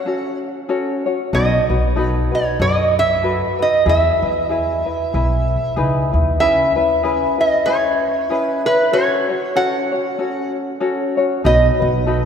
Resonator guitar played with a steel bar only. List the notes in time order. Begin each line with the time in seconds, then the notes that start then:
Already playing: F#5
1.35 D#5
2.07 C#5
2.35 C#5
2.62 D#5
2.99 E5
3.62 D#5
3.89 E5
6.40 E5
7.41 D#5
7.66 C#5
8.39 B4
8.66 B4
8.93 C#5
9.57 F#5
11.46 D#5